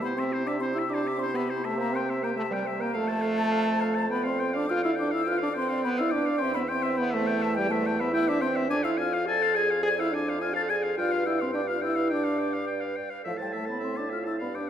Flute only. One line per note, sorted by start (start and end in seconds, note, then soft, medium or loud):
0.02 0.08 B5 medium
0.17 0.24 C6 medium
0.46 0.52 D6 medium
0.60 0.66 C6 loud
0.74 0.91 E6 medium
0.90 1.21 D6 medium
1.19 1.37 C6 medium
1.35 1.66 B5 medium
1.65 1.79 A5 medium
1.80 1.93 A#5 medium
1.95 2.01 C6 medium
2.24 2.30 A#5 medium
2.38 2.51 A5 medium
2.52 2.80 G5 medium
2.80 2.97 A#5 medium
2.96 4.10 A5 loud
4.11 4.25 B5 medium
4.26 4.54 C6 medium
4.55 4.71 D6 medium
4.70 4.84 F6 medium
4.84 4.90 E6 medium
4.99 5.12 D6 medium
5.13 5.29 E6 medium
5.28 5.42 F6 loud
5.43 5.56 D6 medium
5.57 5.84 C6 medium
5.84 5.90 B5 loud
5.98 6.13 E6 medium
6.11 6.41 D6 medium
6.39 6.53 C6 loud
6.54 6.60 B5 medium
6.68 6.99 C6 medium
6.97 7.12 B5 medium
7.13 7.56 A5 medium
7.55 7.72 G5 loud
7.70 7.99 A5 medium
7.99 8.13 B5 medium
8.14 8.27 E6 loud
8.28 8.40 D6 medium
8.41 8.47 C6 medium
8.70 8.76 D6 loud
8.84 8.90 E6 medium
8.99 9.27 F6 medium
9.28 9.58 A6 loud
9.57 9.84 G#6 medium
9.85 9.98 G#6 loud
9.99 10.12 E6 medium
10.14 10.44 D6 medium
10.42 10.55 F6 medium
10.56 10.62 A6 medium
10.70 10.76 G#6 medium
10.97 11.28 F6 medium
11.26 11.43 E6 medium
11.42 11.57 C6 medium
11.55 11.69 D6 medium
11.69 11.83 F6 medium
11.84 12.11 E6 medium
12.13 12.68 D6 medium
13.27 13.33 F5 medium
13.42 13.48 G5 medium
13.55 13.68 A5 medium
13.70 13.86 B5 medium
13.84 13.99 C6 medium
13.97 14.11 D6 medium
14.12 14.18 F6 medium
14.27 14.33 E6 medium
14.40 14.57 B5 medium
14.55 14.70 D6 medium